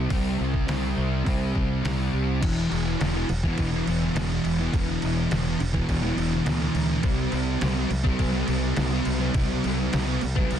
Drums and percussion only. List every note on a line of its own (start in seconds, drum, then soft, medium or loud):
0.10 kick loud
0.10 open hi-hat medium
0.54 kick medium
0.68 snare loud
0.68 open hi-hat medium
0.84 snare soft
1.26 kick loud
1.26 open hi-hat medium
1.55 kick medium
1.85 snare loud
1.85 open hi-hat medium
2.42 kick loud
2.42 crash loud
2.42 crash medium
2.72 crash medium
3.01 snare loud
3.01 crash medium
3.29 crash medium
3.44 kick medium
3.58 kick loud
3.58 crash medium
3.87 crash medium
4.03 snare soft
4.16 snare loud
4.16 crash medium
4.45 crash medium
4.73 kick loud
4.73 crash medium
4.89 snare soft
5.02 crash medium
5.31 snare loud
5.31 crash medium
5.60 crash medium
5.74 kick medium
5.89 kick medium
5.89 crash medium
6.18 crash medium
6.33 snare soft
6.46 snare loud
6.46 crash medium
6.75 crash medium
7.03 kick loud
7.03 crash medium
7.32 crash medium
7.61 snare loud
7.61 crash medium
7.91 crash medium
8.05 kick medium
8.19 kick medium
8.19 crash medium
8.48 crash medium
8.76 snare loud
8.76 crash medium
9.05 crash medium
9.34 kick loud
9.34 crash medium
9.64 crash medium
9.93 snare loud
9.93 crash loud
10.21 crash medium
10.36 kick medium
10.51 crash medium